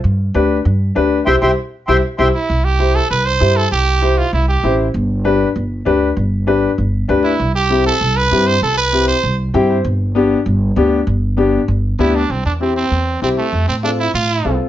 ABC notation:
X:1
M:4/4
L:1/8
Q:1/4=196
K:C
V:1 name="Accordion"
z8 | [egc'] [egc'] z2 [egc'] z [egc'] z | z8 | z8 |
z8 | z8 | z8 | z8 |
z8 | z8 | z8 | z8 |]
V:2 name="Upright piano"
z2 [DGB] z3 [DGB] z | [EGc] [EGc] z2 [EGc] z [EGc] z | z2 [EGc] z3 [EGc] z | z2 [EGc] z3 [EGc] z |
z2 [DGB] z3 [DGB] z | z2 [DGB] z3 [DGB] z | z2 [CEG] z3 [CEG] z | z2 [CEG] z3 [CEGg] c |
z2 [B,DG] z3 [B,DG] z | z2 [B,DG] z3 [B,DG] z | z2 [CEG] z3 [CEG] z | z2 [CFA] z3 [CFA] z |]
V:3 name="Trumpet"
z8 | z6 z E- | E G2 A B c2 A | G3 F E G2 z |
z8 | z6 z E- | E G2 A2 B2 c | A B2 c2 z3 |
z8 | z6 E D | C D C C3 C A,- | A, C D E F3 z |]
V:4 name="Upright bass" clef=bass
G,,2 D,,2 G,,2 D,,2 | C,, C,, z2 C,, z C,, z | C,,4 C,,2 G,,2 | C,,4 C,,2 A,,,2 |
G,,,4 G,,,2 D,,2 | G,,,4 G,,,2 D,,2 | C,,4 C,,2 G,,2 | C,,4 C,,2 G,,2 |
G,,,4 G,,,2 D,,2 | G,,,4 G,,,2 D,,2 | C,, E,,3 E,,2 C,, z | F,, A,,3 A,,2 C,, z |]